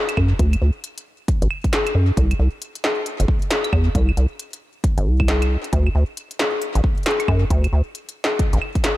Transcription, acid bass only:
0.17 0.34 F#2 medium
0.39 0.56 D2 loud
0.62 0.71 D2 medium
1.42 1.48 A1 medium
1.95 2.12 F#2 medium
2.17 2.34 C2 loud
2.39 2.49 C2 medium
3.20 3.26 G1 medium
3.73 3.90 E2 medium
3.95 4.12 C2 loud
4.17 4.27 C2 medium
4.98 5.08 G1 medium
5.06 5.57 C2 medium
5.73 5.90 D2 loud
5.95 6.04 D2 medium
6.75 6.81 A1 medium
7.28 7.45 F#2 medium
7.50 7.67 D2 loud
7.73 7.82 D2 medium
8.53 8.59 A1 medium

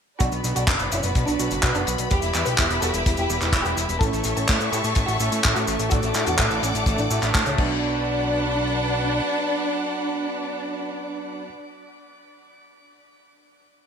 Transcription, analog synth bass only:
0.21 0.30 B1 loud
0.32 0.42 B1 medium
0.44 0.54 B1 medium
0.56 0.66 B1 medium
0.67 0.77 F#1 loud
0.80 0.89 F#1 medium
0.92 1.01 F#1 medium
1.04 1.13 F#1 medium
1.15 1.25 B1 loud
1.28 1.37 B1 medium
1.40 1.49 B1 medium
1.51 1.61 F#1 medium
1.63 1.73 B1 loud
1.75 1.85 F#1 medium
1.87 1.97 B1 medium
1.99 2.09 B1 medium
2.11 2.21 E1 loud
2.23 2.32 E1 medium
2.35 2.44 E2 medium
2.47 2.56 B1 medium
2.59 2.68 E1 loud
2.71 2.80 E1 medium
2.82 2.92 E1 medium
2.94 3.04 E1 medium
3.06 3.16 E1 loud
3.18 3.27 E1 medium
3.30 3.39 E1 medium
3.42 3.51 E1 medium
3.53 3.63 E1 loud
3.65 3.75 E1 medium
3.77 3.87 E1 medium
3.89 3.99 E1 medium
4.01 4.10 A1 loud
4.13 4.23 A1 medium
4.25 4.34 A1 medium
4.37 4.46 A1 medium
4.49 4.58 A2 loud
4.60 4.70 A2 medium
4.72 4.82 A2 medium
4.84 4.94 A2 medium
4.96 5.06 A1 loud
5.08 5.18 A1 medium
5.20 5.30 A1 medium
5.32 5.42 A2 medium
5.45 5.54 A1 loud
5.56 5.65 A2 medium
5.68 5.77 A1 medium
5.80 5.89 A1 medium
5.92 6.01 A1 loud
6.03 6.13 A1 medium
6.15 6.25 A2 medium
6.27 6.37 E2 medium
6.39 6.49 A1 loud
6.51 6.61 A1 medium
6.63 6.73 A1 medium
6.75 6.84 A1 medium
6.86 6.96 A1 loud
6.99 7.08 A1 medium
7.11 7.20 A1 medium
7.23 7.32 A1 medium
7.35 7.44 A2 loud
7.46 7.56 C#2 medium
7.58 9.21 B1 loud

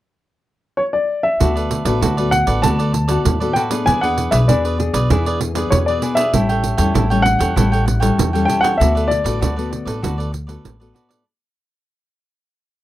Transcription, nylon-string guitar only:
1.41 1.99 D3 soft
1.41 1.82 A3 soft
1.41 1.82 B3 soft
1.41 1.82 F#4 medium
1.86 2.12 A3 medium
1.86 2.12 B3 medium
1.86 2.13 F#4 medium
2.03 2.61 A2 soft
2.19 2.59 A3 medium
2.19 2.60 B3 medium
2.19 2.60 F#4 medium
2.63 3.22 D3 medium
2.63 3.05 A3 soft
2.63 3.05 B3 medium
2.63 3.05 F#4 medium
3.09 3.35 A3 medium
3.09 3.36 B3 medium
3.09 3.36 F#4 medium
3.26 3.84 A2 medium
3.41 3.67 A3 medium
3.41 3.67 B3 medium
3.41 3.67 F#4 medium
3.71 4.01 B3 medium
3.71 4.02 D4 medium
3.71 4.02 G#4 medium
3.86 4.45 E3 medium
4.02 4.44 B3 medium
4.02 4.44 D4 medium
4.02 4.44 G#4 medium
4.49 5.07 B2 medium
4.49 4.75 B3 medium
4.49 4.75 D4 medium
4.49 4.75 G#4 medium
4.79 4.97 B3 medium
4.79 4.98 D4 medium
4.79 4.98 G#4 medium
5.10 5.69 E3 medium
5.10 5.52 B3 medium
5.10 5.52 D4 medium
5.10 5.52 G#4 medium
5.55 5.97 B3 medium
5.55 5.97 D4 medium
5.55 5.97 G#4 medium
5.72 6.30 B2 medium
6.02 6.22 B3 medium
6.02 6.22 D4 medium
6.02 6.23 G#4 medium
6.33 6.92 A2 soft
6.33 6.75 G3 soft
6.33 6.75 C#4 medium
6.33 6.75 E4 medium
6.79 7.05 G3 medium
6.79 7.06 C#4 medium
6.79 7.06 E4 medium
6.95 7.54 E3 medium
7.11 7.52 G3 medium
7.11 7.53 C#4 medium
7.11 7.53 E4 medium
7.57 8.16 A2 soft
7.57 7.99 G3 medium
7.57 7.99 C#4 soft
7.57 7.99 E4 medium
8.02 8.28 G3 medium
8.02 8.29 C#4 medium
8.02 8.29 E4 medium
8.18 8.77 E3 medium
8.34 8.75 G3 medium
8.34 8.76 C#4 medium
8.34 8.76 E4 medium
8.81 9.39 D3 soft
8.81 9.22 A3 medium
8.81 9.22 B3 soft
8.81 9.22 F#4 medium
9.25 9.52 A3 medium
9.25 9.52 B3 medium
9.25 9.52 F#4 medium
9.42 10.00 A2 soft
9.58 9.99 A3 medium
9.58 9.99 B3 medium
9.58 9.99 F#4 medium
10.03 10.62 D3 medium
10.03 10.32 A3 soft
10.03 10.32 B3 medium
10.03 10.32 F#4 medium
10.48 10.75 A3 medium
10.48 10.75 B3 medium
10.48 10.75 F#4 medium
10.64 11.23 A2 medium
10.80 11.21 A3 medium
10.80 11.21 B3 medium
10.80 11.22 F#4 medium

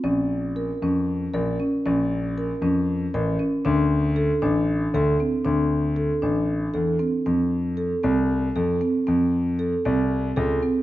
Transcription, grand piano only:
0.04 0.68 A#1 medium
0.82 1.25 F2 medium
1.34 1.55 A#1 medium
1.86 2.50 A#1 medium
2.62 3.04 F2 loud
3.14 3.35 A1 loud
3.65 4.29 D2 loud
4.42 4.85 A1 loud
4.94 5.15 D2 medium
5.45 6.09 D2 medium
6.23 6.65 A1 medium
6.74 6.96 E2 medium
7.26 7.91 F2 medium
8.04 8.47 C2 medium
8.56 8.77 F2 loud
9.08 9.72 F2 loud
9.86 10.28 C2 medium
10.37 10.59 C#2 loud

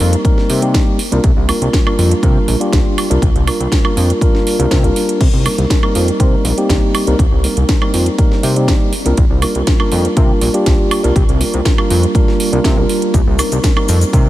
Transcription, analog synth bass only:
0.00 0.16 F2 loud
0.50 0.79 C3 medium
1.12 1.19 C2 medium
1.24 1.32 C2 medium
1.36 1.51 C2 medium
1.61 1.69 C2 medium
1.98 2.14 F2 medium
2.23 2.38 C3 medium
2.48 2.56 A#1 loud
2.73 2.80 C2 medium
3.11 3.18 C2 medium
3.22 3.30 C2 medium
3.35 3.50 C2 medium
3.60 3.67 C2 medium
3.97 4.12 F2 medium
4.59 4.67 C2 medium
4.71 4.85 C3 medium
4.84 4.91 C2 loud
5.21 5.28 C2 medium
5.33 5.48 C2 medium
5.58 5.66 C2 medium
5.95 6.11 F2 medium
6.20 6.35 C3 medium
6.45 6.52 A#1 loud
6.69 6.77 C2 medium
7.07 7.14 C2 medium
7.19 7.27 C2 medium
7.32 7.47 C2 medium
7.57 7.64 C2 medium
7.94 8.09 F2 medium
8.43 8.73 C3 medium
9.06 9.13 C2 medium
9.18 9.25 C2 medium
9.30 9.45 C2 medium
9.55 9.62 C2 medium
9.92 10.07 F2 medium
10.17 10.32 C3 medium
10.41 10.49 A#1 loud
10.66 10.74 C2 medium
11.04 11.11 C2 medium
11.16 11.24 C2 loud
11.29 11.43 C2 medium
11.54 11.61 C2 medium
11.90 12.06 F2 medium
12.53 12.60 C2 medium
12.64 12.79 C3 medium
12.77 12.85 C2 loud
13.14 13.22 C2 loud
13.27 13.42 C2 medium
13.52 13.59 C2 medium
13.89 14.04 F2 medium
14.13 14.29 C3 medium

